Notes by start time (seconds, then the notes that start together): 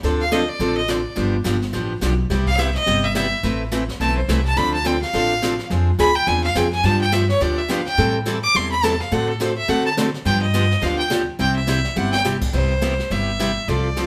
0.03 D2 D3 F3 C4 D4 A4, brush sweep, snare
0.21 F5
0.31 D3 F3 C4 D4 A4 D#5, snare, hi-hat pedal
0.49 D5
0.59 A1 D3 F3 C4 D4 A4, brush sweep, snare
0.77 D#5
0.88 D3 F3 C4 D4 A4 D5, snare, hi-hat pedal
1.16 G1 D3 F3 B3 D4 G4, brush sweep, snare
1.44 G1 D3 F3 B3 D4 G4, snare, hi-hat pedal
1.62 snare
1.73 A1 D3 F3 B3 D4 G4, brush sweep, snare
2.01 B1 D3 F3 B3 D4 G4, snare, hi-hat pedal
2.30 C2 C3 G3 B3 E4 G4, brush sweep, snare
2.47 F5, kick
2.58 C3 G3 B3 E4 G4 E5, snare, hi-hat pedal
2.75 D#5, snare
2.86 G1 C3 G3 B3 E4 G4, brush sweep, snare
3.04 E5
3.15 C3 G3 B3 E4 G4 E5, snare, hi-hat pedal
3.43 A1 E3 A3 C4 E4 B4, brush sweep, snare
3.71 E3 A3 C4 E4 B4, snare, hi-hat pedal
3.89 snare
4.00 B1 E3 A3 C4 E4 B4 A5, brush sweep, snare
4.18 C5
4.28 C2 E3 A3 C4 E4 B4 E5, snare, hi-hat pedal
4.45 A5, snare
4.56 D2 D3 F3 C4 D4 A4 B5, brush sweep, snare
4.74 A5
4.84 D3 F3 C4 D4 A4 G5, snare, hi-hat pedal
5.02 F5, snare
5.13 A1 D3 F3 C4 D4 A4, brush sweep, snare
5.42 D3 F3 C4 D4 A4, snare, hi-hat pedal
5.59 snare
5.70 F2 F3 C4 D4 G#4, brush sweep, snare
5.98 D2 F3 C4 D4 G#4 B5, snare, hi-hat pedal
6.15 G5
6.27 E2 F3 C4 D4 G#4 G#5, brush sweep, snare
6.44 F5
6.55 F2 F3 C4 D4 G#4 G5, snare, hi-hat pedal
6.72 G#5, snare
6.83 G2 D3 F3 B3 D4 G4 A5, brush sweep, snare
7.01 G5
7.12 D3 F3 B3 D4 G4 E5, snare, hi-hat pedal
7.29 C#5, snare
7.40 D2 D3 F3 B3 D4 G4 D5, brush sweep, snare
7.58 E5
7.69 D3 F3 B3 D4 G4 F5, snare, hi-hat pedal
7.86 G5, snare
7.97 A2 E3 G3 C4 E4 A4, brush sweep, snare
8.26 E3 G3 C4 E4 A4, snare, hi-hat pedal
8.43 D6
8.55 E2 E3 G3 C4 E4 A4 C6, brush sweep, snare
8.72 B5
8.83 E3 G3 C4 E4 A4 A5, snare, hi-hat pedal
9.00 F5, snare
9.11 A2 D3 A3 C4 F#4 A4 F#5, brush sweep, snare
9.29 A4
9.40 D3 A3 C4 F#4 A4 C5, snare, hi-hat pedal
9.57 E5
9.68 D3 A3 C4 F#4 A4 F#5, brush sweep, snare
9.86 A5
9.97 D3 A3 C4 F#4 A4, snare, hi-hat pedal
10.14 snare
10.25 G2 D3 F3 B3 D4 G4 G5, brush sweep, snare
10.42 D#5
10.54 D3 F3 B3 D4 G4, snare, hi-hat pedal
10.71 snare
10.82 D2 D3 F3 B3 D4 G4 F5, brush sweep, snare
10.99 G5
11.10 D3 F3 B3 D4 G4, snare, hi-hat pedal
11.39 C2 C3 G3 C4 E4 G4 G5, brush sweep, snare
11.56 E5
11.67 C3 G3 C4 E4 G4, snare, hi-hat pedal
11.84 snare
11.96 G1 C3 G3 C4 E4 G4 F#5
12.12 G5, snare
12.24 C3 G3 C4 E4 G4, snare, hi-hat pedal
12.41 kick, crash
12.53 C2 C3 G3 B3 E4 G4 C5, brush sweep, snare
12.82 C3 G3 B3 E4 G4, snare, hi-hat pedal
12.99 snare
13.10 G1 C3 G3 B3 E4 G4 E5, brush sweep, snare
13.39 C3 G3 B3 E4 G4, snare, hi-hat pedal
13.68 C2 C3 F3 C4 F4 A4 D5, brush sweep, snare
13.97 C3 F3 C4 F4 A4, snare, hi-hat pedal